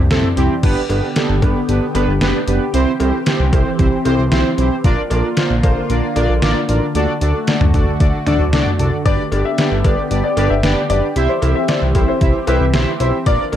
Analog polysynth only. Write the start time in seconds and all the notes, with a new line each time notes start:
0.11 C4 E4 A4
0.37 C4 E4 G4
0.63 B3 D4 G4 B4
0.90 B3 D4 G4 B4
1.16 B3 D4 G4 A4
1.42 B3 D4 G4 B4
1.69 B3 D4 G4 B4
1.95 B3 D4 G4 B4
2.21 B3 D4 G4 B4
2.48 B3 D4 G4 B4
2.74 C4 E4 G4 C5
3.00 C4 E4 G4 C5
3.27 C4 E4 G4 C5
3.53 C4 E4 G4 C5
3.79 C4 E4 G4 C5
4.05 C4 E4 G4 C5
4.32 C4 E4 G4 C5
4.58 C4 E4 G4 C5
4.84 D4 F4 A#4 D5
5.11 D4 F4 A#4 D5
5.37 D4 F4 A#4 C5
5.63 D4 F4 A#4 C5
5.90 D4 F4 A#4 D5
6.16 D4 F4 A#4 D5
6.42 D4 F4 A#4 D5
6.69 D4 F4 A#4 D5
6.95 D4 F#4 A4 D5
7.21 D4 F#4 A4 D5
7.48 D4 F#4 A4 D5
7.74 D4 F#4 A4 D5
8.00 D4 F#4 A4 D5
8.27 D4 F#4 A4 D5
8.53 D4 F#4 A4 D5
8.79 D4 F#4 A4 D5
9.05 D4 G4 B4 D5
9.32 D4 G4 B4 D5
9.58 D4 G4 B4 D5
9.84 D4 G4 B4 D5
10.11 D4 G4 B4 D5
10.37 D4 G4 B4 D5
10.63 D4 G4 B4 D5
10.90 D4 G4 B4 D5
11.16 E4 G4 C5 E5
11.42 E4 G4 C5 E5
11.69 E4 G4 C5 E5
11.95 E4 G4 C5 E5
12.21 E4 G4 C5 E5
12.47 E4 G4 C5 E5
12.74 E4 G4 C5 E5
13.00 E4 G4 C5 E5
13.26 D4 F4 A#4 D5
13.53 D4 F4 A#4 D5